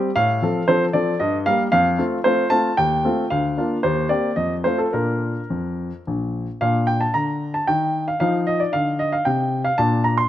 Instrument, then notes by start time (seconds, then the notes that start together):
grand piano
0.16 A2 F5
0.42 F3 C4 A4
0.68 F3 C4 A4 C5
0.93 F3 C4 A4 D5
1.20 G2 D#5
1.46 G3 A#3 A#4 F5
1.72 F2 F5
1.98 A3 C4 F4
2.24 A3 C4 F4 C5
2.50 A3 C4 F4 A5
2.77 D#2 G5
3.05 A3 C4 F4
3.30 D2 F5
3.58 A#3 D4 F4
3.83 D#2 C5
4.09 A#3 C4 G4 D5
4.36 F2 D#5
4.64 A3 C4 F4 C5
4.78 A4
4.93 A#2 D4 F4 A#4
5.50 F2
6.07 A#1
6.61 A#2 D4 F5
6.87 G5
7.01 A5
7.14 D3 A#5
7.54 A5
7.67 D#3 G5
8.08 F5
8.20 F3 D#4 F5
8.47 D#5
8.60 D5
8.73 D3 F5
8.99 D#5
9.12 F5
9.25 C3 G5
9.64 F5
9.78 A#2 D4 A5
10.04 A#5
10.18 C6